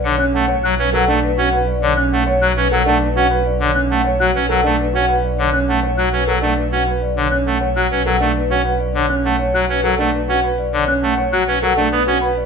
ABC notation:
X:1
M:3/4
L:1/16
Q:1/4=101
K:Bm
V:1 name="Flute"
z f' z2 f' z6 z | z f' z2 f' z6 z | z f' z2 f' z6 z | z f' z2 f' z6 z |
z f' z2 f' z6 z | z f' z2 f' z6 z | z f' z2 f' z4 z b z |]
V:2 name="Vibraphone"
c z f c z B f z B f z d | c z f c z B f z B f z d | c z f c z B f z B f z d | c z f c z B f z B f z d |
c z f c z B f z B f z d | c z f c z B f z B f z d | c z f c z B f z B f z d |]
V:3 name="Grand piano"
z C z c z2 A D z F B z | z C z c z2 A D z F B z | z C z c F z A D z F B z | z C z c F z A D z F B z |
z C z c F z A D z F B z | z C z c F z A D z F B z | z C z c F z A D z F B z |]
V:4 name="Pipe organ"
D, z A, z F, C F, A, z C z2 | D, z A, z F, C F, A, z C z2 | D, z A, z F, C F, A, z C z2 | D, z A, z F, C F, A, z C z2 |
D, z A, z F, C F, A, z C z2 | D, z A, z F, C F, A, z C z2 | D, z A, z F, C F, A, B, C z2 |]
V:5 name="Double bass" clef=bass
B,,,12- | B,,,12- | B,,,12- | B,,,12- |
B,,,12- | B,,,12- | B,,,12 |]